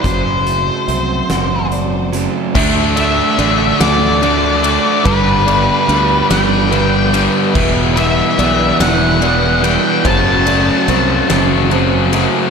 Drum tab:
CC |------|x-----|------|x-----|
RD |------|-xxxxx|xxxxxx|-xxxxx|
HH |xxxxxx|------|------|------|
SD |---o--|---o--|---o--|---o--|
BD |o-----|o-----|o-----|o-----|

CC |------|
RD |xxxxxx|
HH |------|
SD |---o--|
BD |o-----|